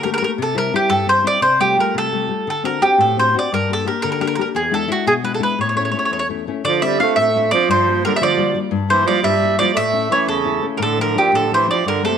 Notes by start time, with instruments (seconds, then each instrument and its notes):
Already playing: nylon-string guitar D3
0.03 nylon-string guitar A3 A#3 G4, mandolin A#4
0.14 mandolin A#4
0.18 nylon-string guitar A3, mandolin A#4
0.22 nylon-string guitar A#3 G4, mandolin A#4
0.38 nylon-string guitar C3
0.42 mandolin A4
0.54 nylon-string guitar G3 C4 E4, mandolin A#4
0.73 nylon-string guitar G3 C4 E4, mandolin G4
0.89 nylon-string guitar G2, mandolin A4
1.06 nylon-string guitar G3 C4 E4, mandolin C5
1.23 nylon-string guitar G3 C4 E4, mandolin D5
1.41 nylon-string guitar C3, mandolin C5
1.60 nylon-string guitar G3 A3 F4, mandolin G4
1.78 nylon-string guitar G3 A3 F4, mandolin A#4
1.94 nylon-string guitar C3, mandolin A4
2.12 nylon-string guitar G3 A3 F4
2.27 nylon-string guitar G3 A3 F4
2.47 nylon-string guitar D3, mandolin A4
2.63 nylon-string guitar C4 D4 F#4, mandolin A#4
2.82 nylon-string guitar C4 D4 F#4, mandolin G4
2.98 nylon-string guitar A2, mandolin A4
3.16 nylon-string guitar C4 D4 F#4, mandolin C5
3.34 nylon-string guitar C4 D4 F#4
3.39 mandolin D5
3.52 nylon-string guitar G2, mandolin A#4
3.69 nylon-string guitar A#3 D4 G4, mandolin A4
3.86 nylon-string guitar A#3 D4 G4, mandolin A#4
4.02 nylon-string guitar D3, mandolin A#4
4.12 mandolin A#4
4.20 nylon-string guitar A#3 D4 G4, mandolin A#4
4.27 mandolin A#4
4.35 nylon-string guitar A#3 D4 G4, mandolin A#4
4.41 mandolin A#4
4.55 nylon-string guitar E2, mandolin G#4
4.71 nylon-string guitar G#3 D4 E4, mandolin A4
4.88 nylon-string guitar G#3 D4 E4
4.92 mandolin F#4
5.06 nylon-string guitar B2, mandolin G#4
5.23 nylon-string guitar G#3 D4 E4, mandolin B4
5.34 mandolin A4
5.39 nylon-string guitar G#3 D4 E4
5.43 mandolin B4
5.59 nylon-string guitar A2, mandolin C#5
5.69 mandolin C#5
5.75 nylon-string guitar A3 C#4 E4, mandolin C#5
5.85 mandolin C#5
5.92 nylon-string guitar A3 C#4 E4, mandolin C#5
5.99 mandolin C#5
6.05 mandolin C#5
6.10 nylon-string guitar E2, mandolin C#5
6.19 mandolin C#5
6.29 nylon-string guitar A3 C#4 E4
6.47 nylon-string guitar A3 C#4 E4
6.64 nylon-string guitar D3, tenor saxophone F3, mandolin D5
6.82 tenor saxophone G3, nylon-string guitar C4 D4 F4, mandolin E5
6.99 tenor saxophone A3, nylon-string guitar C4 D4 F4, mandolin F5
7.16 nylon-string guitar A2, mandolin E5
7.20 tenor saxophone A3
7.35 nylon-string guitar C4 D4 F4
7.51 tenor saxophone F3, nylon-string guitar C4 D4 F4, mandolin D5
7.69 nylon-string guitar G2, tenor saxophone F3, mandolin C5
7.87 nylon-string guitar G3 A#3 F4
8.05 tenor saxophone D3, nylon-string guitar G3 A#3 F4, mandolin A#4
8.15 tenor saxophone G3, mandolin E5
8.20 nylon-string guitar D3, tenor saxophone F3, mandolin D5
8.38 nylon-string guitar G3 A#3 F4
8.54 nylon-string guitar G3 A#3 F4
8.71 nylon-string guitar G2
8.89 tenor saxophone E3, nylon-string guitar G3 A#3 E4, mandolin C5
9.05 tenor saxophone F3, nylon-string guitar G3 A#3 E4, mandolin D5
9.23 nylon-string guitar G2, tenor saxophone G3, mandolin E5
9.43 nylon-string guitar G3 A#3 E4
9.58 tenor saxophone F3, nylon-string guitar G3 A#3 E4, mandolin D5
9.74 nylon-string guitar A2, tenor saxophone A3, mandolin E5
9.93 nylon-string guitar A3 C#4 E4
10.10 tenor saxophone E3, nylon-string guitar A3 C#4 E4, mandolin C#5
10.26 nylon-string guitar E2, tenor saxophone C#3, mandolin A4
10.44 nylon-string guitar A3 C#4 E4
10.61 nylon-string guitar A3 C#4 E4
10.76 nylon-string guitar A2, tenor saxophone D3, mandolin A#4
10.81 tenor saxophone D3, mandolin A4
10.97 tenor saxophone D3, nylon-string guitar F3 D4 E4
11.01 mandolin A#4
11.14 tenor saxophone A#2, nylon-string guitar F3 D4 E4, mandolin G4
11.32 nylon-string guitar A2, tenor saxophone D3, mandolin A4
11.51 tenor saxophone E3, nylon-string guitar F3 D4 E4, mandolin C5
11.67 nylon-string guitar F3 D4 E4, tenor saxophone F3, mandolin D5
11.85 nylon-string guitar G2, tenor saxophone D3, mandolin A#4
12.03 tenor saxophone C3, nylon-string guitar A3 A#3 G4, mandolin A4